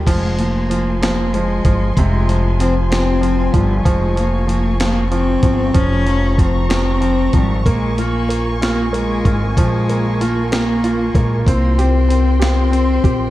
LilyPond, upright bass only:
\new Staff \with { instrumentName = "Upright bass" } { \clef bass \time 6/8 \key f \minor \tempo 4. = 63 f,,2~ f,,8 g,,8 | f,,2~ f,,8 g,,8 | f,,2~ f,,8 g,,8 | f,,2~ f,,8 aes,,8 |
bes,,2~ bes,,8 aes,,8 | bes,,2~ bes,,8 bes,,8 | c,2~ c,8 bes,,8 | }